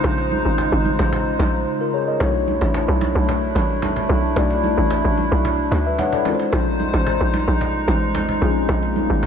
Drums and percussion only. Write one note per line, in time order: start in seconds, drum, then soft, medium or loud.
0.04 cajon bass loud
0.04 low conga medium
0.18 cajon slap medium
0.31 cajon slap medium
0.31 high conga medium
0.45 cajon slap soft
0.58 cajon bass loud
0.58 cajon slap loud
0.73 cajon slap soft
0.85 cajon slap soft
0.85 high conga medium
0.99 cajon slap loud
1.13 cajon bass loud
1.26 cajon slap soft
1.39 cajon slap loud
1.39 high conga medium
1.53 cajon slap soft
2.20 cajon bass loud
2.20 low conga medium
2.34 cajon slap soft
2.47 cajon slap medium
2.47 high conga medium
2.61 cajon slap medium
2.74 cajon bass loud
2.74 cajon slap loud
2.89 cajon slap soft
3.01 cajon slap medium
3.01 high conga medium
3.15 cajon slap soft
3.29 cajon bass loud
3.42 cajon slap soft
3.55 cajon slap loud
3.55 high conga medium
3.69 cajon slap soft
3.82 cajon bass medium
3.82 cajon slap loud
3.82 high conga medium
3.82 low conga medium
3.96 cajon bass loud
4.09 cajon slap soft
4.09 low conga medium
4.23 cajon slap soft
4.36 cajon bass loud
4.36 low conga medium
4.50 cajon slap medium
4.63 cajon slap medium
4.63 high conga medium
4.77 cajon slap soft
4.90 cajon bass loud
4.90 cajon slap loud
5.05 cajon slap soft
5.17 cajon slap soft
5.17 high conga medium
5.31 cajon slap soft
5.45 cajon bass loud
5.58 cajon slap soft
5.72 cajon slap loud
5.72 high conga medium
5.86 cajon slap soft
5.99 cajon bass medium
5.99 cajon slap medium
5.99 high conga medium
5.99 low conga medium
6.13 cajon bass loud
6.25 cajon slap loud
6.25 low conga medium
6.40 cajon slap medium
6.53 cajon bass loud
6.53 low conga medium
6.67 cajon slap soft
6.79 cajon slap medium
6.79 high conga medium
6.94 cajon slap medium
7.07 cajon bass loud
7.07 cajon slap loud
7.21 cajon slap soft
7.34 cajon slap medium
7.34 high conga medium
7.47 cajon slap soft
7.61 cajon bass loud
7.74 cajon slap soft
7.88 cajon slap loud
7.88 high conga medium
8.02 cajon slap soft
8.15 cajon bass medium
8.15 cajon slap loud
8.15 high conga medium
8.15 low conga medium
8.29 cajon bass loud
8.41 cajon slap soft
8.41 low conga medium
8.56 cajon slap soft
8.69 cajon bass loud
8.69 low conga medium
8.83 cajon slap medium
8.96 cajon slap medium
8.96 high conga medium
9.10 cajon slap soft
9.23 cajon bass loud
9.23 cajon slap loud